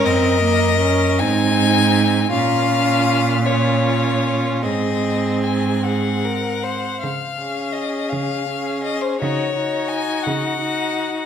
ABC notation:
X:1
M:6/8
L:1/16
Q:3/8=54
K:Db
V:1 name="Violin"
e6 a6 | f6 d6 | e4 a2 g6 | f4 e2 f4 e c |
d4 a2 g6 |]
V:2 name="Violin"
B6 E6 | F6 F6 | A6 A2 B2 c2 | z2 A6 A4 |
G2 G6 G4 |]
V:3 name="Viola"
C2 B,2 D2 C6 | D6 D6 | C8- C2 z2 | z2 D6 D4 |
E2 E6 E4 |]
V:4 name="Cello" clef=bass
G,,6 A,,6 | B,,12 | A,,8- A,,2 z2 | D,6 D,6 |
D,6 D,6 |]